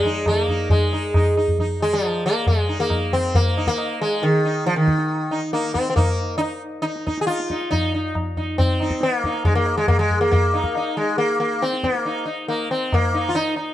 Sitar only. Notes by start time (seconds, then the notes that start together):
Already playing: G#3
0.06 D#4
0.28 A#3
0.49 D#4
0.71 G#3
0.93 D#4
1.16 D#4
1.37 D#4
1.60 D#4
1.82 G#3
1.93 F3
2.26 A#3
2.48 G#3
2.69 D#4
2.80 A#3
3.13 C4
3.35 A#3
3.57 D#4
3.68 A#3
4.02 G#3
4.23 D#3
4.45 D#4
4.66 F3
4.76 D#3
5.31 D#4
5.53 A#3 D#4
5.74 C4
5.90 C4
5.96 A#3 D#4
6.38 D#4
6.82 D#4
7.07 D#4
7.21 G#4
7.27 D#4 F4
7.51 D#4
7.71 D#4
7.94 D#4
8.37 D#4
8.58 C4
8.81 D#4
9.03 B3
9.18 A#3
9.25 D#4
9.45 G#3
9.55 A#3
9.77 G#3
9.88 A#3
9.99 G#3
10.21 A#3
10.31 A#3
10.54 D#4
10.77 D#4
10.97 G#3
11.18 A#3
11.40 A#3
11.62 C4
11.84 A#3
12.05 D#4
12.25 D#4
12.48 A#3
12.71 C4
12.94 A#3
13.14 D#4
13.29 F4
13.35 D#4
13.56 D#4